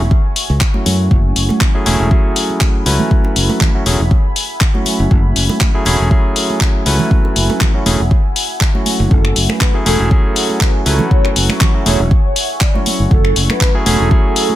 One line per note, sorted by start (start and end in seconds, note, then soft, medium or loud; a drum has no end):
0.00 14.55 E5 medium
0.00 14.55 F#5 medium
0.00 14.55 G#5 medium
0.00 1.10 C#6 medium
0.11 kick loud
0.36 open hi-hat loud
0.50 0.59 C#2 medium
0.61 kick loud
0.61 clap loud
0.74 1.71 F#3 medium
0.74 1.71 A3 medium
0.74 1.71 C#4 medium
0.74 1.72 E4 medium
0.74 1.72 F#4 medium
0.74 high conga medium
0.86 1.07 F#2 medium
0.86 open hi-hat loud
0.86 high conga medium
1.11 1.32 F#1 medium
1.11 9.10 B5 medium
1.11 kick loud
1.36 1.47 F#1 medium
1.36 open hi-hat loud
1.49 high bongo medium
1.49 high conga medium
1.61 kick loud
1.61 clap loud
1.74 1.84 F#3 loud
1.74 1.84 A3 medium
1.74 1.84 C#4 medium
1.74 1.84 E4 medium
1.74 1.85 G#4 loud
1.86 1.97 E1 medium
1.86 2.08 F#3 medium
1.86 2.08 A3 medium
1.86 2.08 C#4 medium
1.86 2.08 E4 medium
1.86 2.09 G#4 loud
1.86 open hi-hat loud
1.86 high conga medium
2.00 2.09 E1 medium
2.10 2.83 F#3 medium
2.10 2.83 A3 medium
2.10 2.83 C#4 medium
2.10 2.84 E4 medium
2.10 2.84 G#4 medium
2.10 kick loud
2.36 open hi-hat loud
2.36 high bongo soft
2.50 high conga medium
2.61 kick loud
2.61 clap loud
2.85 2.97 C#2 medium
2.85 3.71 F#3 medium
2.85 3.71 A3 medium
2.85 3.71 C#4 medium
2.85 3.72 E4 medium
2.85 3.72 B4 loud
2.85 open hi-hat loud
2.99 high conga medium
2.99 low conga medium
3.11 kick loud
3.24 high bongo medium
3.36 3.47 F#1 medium
3.36 open hi-hat loud
3.49 high bongo medium
3.49 high conga medium
3.61 kick loud
3.61 clap loud
3.61 low conga medium
3.74 3.83 F#3 medium
3.74 3.83 A3 medium
3.74 3.83 C#4 medium
3.74 3.83 E4 medium
3.74 3.84 F#4 medium
3.86 3.97 E1 medium
3.86 4.00 F#3 medium
3.86 4.00 A3 medium
3.86 4.00 C#4 medium
3.86 4.00 E4 medium
3.86 4.00 G#4 loud
3.86 open hi-hat loud
3.86 high conga medium
4.00 4.09 E1 medium
4.11 kick loud
4.36 open hi-hat loud
4.61 kick loud
4.61 clap loud
4.74 5.71 F#3 medium
4.74 5.71 A3 medium
4.74 5.71 C#4 medium
4.74 5.72 E4 medium
4.74 5.72 F#4 medium
4.74 high conga medium
4.86 open hi-hat loud
4.86 high conga medium
5.00 5.09 F#1 medium
5.11 5.32 F#1 loud
5.11 kick loud
5.36 5.47 F#1 medium
5.36 open hi-hat loud
5.49 high bongo medium
5.49 high conga medium
5.61 kick loud
5.61 clap loud
5.74 5.84 F#3 medium
5.74 5.84 A3 medium
5.74 5.84 C#4 medium
5.74 5.84 E4 medium
5.74 5.85 G#4 loud
5.85 5.97 E1 medium
5.85 6.08 F#3 medium
5.85 6.08 A3 medium
5.85 6.08 C#4 medium
5.85 6.08 E4 medium
5.85 6.08 G#4 loud
5.85 open hi-hat loud
5.85 high conga medium
6.00 6.09 E1 medium
6.10 6.83 F#3 medium
6.10 6.83 A3 medium
6.10 6.83 C#4 medium
6.10 6.83 E4 medium
6.10 6.84 G#4 medium
6.10 kick loud
6.36 open hi-hat medium
6.36 high bongo soft
6.50 high conga medium
6.61 kick loud
6.61 clap loud
6.85 6.97 C#2 medium
6.85 7.71 F#3 medium
6.85 7.71 A3 medium
6.85 7.71 C#4 medium
6.85 7.72 E4 medium
6.85 7.72 B4 loud
6.85 open hi-hat loud
6.99 high conga medium
6.99 low conga medium
7.11 kick loud
7.25 high bongo medium
7.36 7.47 F#1 medium
7.36 open hi-hat loud
7.50 high bongo medium
7.50 high conga medium
7.61 kick loud
7.61 clap loud
7.61 low conga medium
7.74 7.83 F#3 medium
7.74 7.83 A3 medium
7.74 7.83 C#4 medium
7.74 7.83 E4 medium
7.74 7.83 F#4 medium
7.86 7.97 E1 medium
7.86 8.00 F#3 medium
7.86 8.00 A3 medium
7.86 8.00 C#4 medium
7.86 8.00 E4 medium
7.86 8.00 G#4 loud
7.86 open hi-hat loud
7.86 high conga medium
8.00 8.09 E1 medium
8.11 kick loud
8.36 open hi-hat loud
8.61 kick loud
8.61 clap loud
8.74 9.71 F#3 medium
8.74 9.71 A3 medium
8.74 9.71 C#4 medium
8.74 9.72 E4 medium
8.74 9.72 F#4 medium
8.74 high conga medium
8.86 open hi-hat loud
8.86 high conga medium
9.00 9.09 F#1 loud
9.11 9.32 F#1 medium
9.11 9.35 A4 loud
9.11 14.55 C#6 medium
9.11 kick loud
9.25 finger snap medium
9.36 9.47 F#1 medium
9.36 open hi-hat loud
9.49 9.73 B4 loud
9.49 finger snap medium
9.49 high bongo medium
9.49 high conga loud
9.61 kick loud
9.61 clap loud
9.74 9.84 F#3 loud
9.74 9.84 A3 medium
9.74 9.84 C#4 medium
9.74 9.84 E4 medium
9.74 9.85 G#4 loud
9.86 9.97 E1 medium
9.86 10.08 F#3 medium
9.86 10.08 A3 medium
9.86 10.08 C#4 medium
9.86 10.08 E4 medium
9.86 10.09 G#4 loud
9.86 10.10 A4 medium
9.86 open hi-hat loud
9.86 high conga medium
10.00 10.09 E1 medium
10.10 10.83 F#3 medium
10.10 10.83 A3 medium
10.10 10.83 C#4 medium
10.10 10.84 E4 medium
10.10 10.84 G#4 medium
10.10 kick loud
10.25 10.48 A4 medium
10.36 open hi-hat loud
10.36 high bongo soft
10.50 high conga medium
10.61 10.78 B4 medium
10.61 kick loud
10.61 clap loud
10.85 10.97 C#2 medium
10.85 11.71 F#3 loud
10.85 11.71 A3 medium
10.85 11.71 C#4 medium
10.85 11.72 E4 medium
10.85 11.03 A4 medium
10.85 11.72 B4 loud
10.85 open hi-hat loud
10.99 high conga medium
10.99 low conga medium
11.11 11.35 C#5 loud
11.11 kick loud
11.25 finger snap medium
11.25 high bongo medium
11.36 11.47 F#1 medium
11.36 open hi-hat loud
11.49 11.73 C#5 medium
11.49 finger snap medium
11.49 high bongo medium
11.49 high conga medium
11.61 kick loud
11.61 clap loud
11.61 low conga medium
11.74 11.83 F#3 medium
11.74 11.83 A3 medium
11.74 11.83 C#4 medium
11.74 11.83 E4 medium
11.74 11.84 F#4 medium
11.86 11.97 E1 medium
11.86 12.00 F#3 medium
11.86 12.00 A3 medium
11.86 12.00 C#4 medium
11.86 12.00 E4 medium
11.86 12.00 G#4 loud
11.86 12.10 C#5 loud
11.86 open hi-hat loud
11.86 high conga medium
12.00 12.09 E1 medium
12.11 kick loud
12.25 12.48 C#5 loud
12.36 open hi-hat loud
12.61 12.78 D5 medium
12.61 kick loud
12.61 clap loud
12.74 13.71 F#3 medium
12.74 13.71 A3 medium
12.74 13.71 C#4 medium
12.74 13.72 E4 medium
12.74 13.72 F#4 medium
12.74 high conga medium
12.86 13.03 C#5 medium
12.86 open hi-hat loud
12.86 high conga medium
13.00 13.09 F#1 medium
13.11 13.35 A4 loud
13.11 kick loud
13.25 finger snap medium
13.36 13.47 F#1 medium
13.36 open hi-hat loud
13.50 13.73 B4 medium
13.50 finger snap medium
13.50 high bongo medium
13.50 high conga medium
13.61 kick loud
13.61 clap loud
13.74 13.84 F#3 loud
13.74 13.84 A3 medium
13.74 13.84 C#4 medium
13.74 13.84 E4 medium
13.74 13.85 G#4 loud
13.86 13.97 E1 medium
13.86 14.08 F#3 loud
13.86 14.08 A3 medium
13.86 14.08 C#4 medium
13.86 14.08 E4 medium
13.86 14.09 G#4 loud
13.86 14.10 A4 loud
13.86 open hi-hat loud
13.86 high conga medium
14.00 14.09 E1 medium
14.10 14.55 F#3 medium
14.10 14.55 A3 medium
14.10 14.55 C#4 medium
14.10 14.55 E4 medium
14.10 14.55 G#4 medium
14.10 kick loud
14.25 14.48 A4 loud
14.36 open hi-hat loud
14.36 high bongo soft
14.49 high conga medium